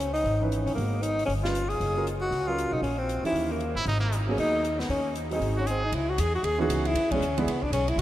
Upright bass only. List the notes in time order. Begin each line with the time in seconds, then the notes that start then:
Already playing: C#2
0.24 G#1
0.66 D#2
0.76 G#1
1.28 G1
1.80 F#1
2.31 C#2
2.71 B1
2.81 A#1
3.23 muted upright bass stroke
3.32 D#2
3.75 G1
3.86 G#1
4.37 D#2
4.89 D#2
5.40 G#1
5.92 C#2
6.18 E2
6.43 D#2
6.69 C#2
6.95 E2
7.20 D2
7.46 C#2
7.70 B1
7.96 A1